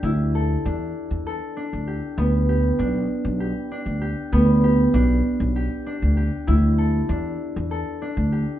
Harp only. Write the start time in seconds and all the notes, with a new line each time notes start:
Already playing: D4 G4 A4
0.04 E4
0.35 A4
0.65 D4
1.27 A4
1.57 D4
1.87 G4
2.18 B3
2.49 G4
2.79 D4
3.40 G4
3.71 D4
4.01 G4
4.33 B3
4.64 G4
4.94 D4
5.56 G4
5.86 D4
6.17 G4
6.47 E4
6.78 A4
7.09 D4
7.71 A4
8.02 D4
8.32 G4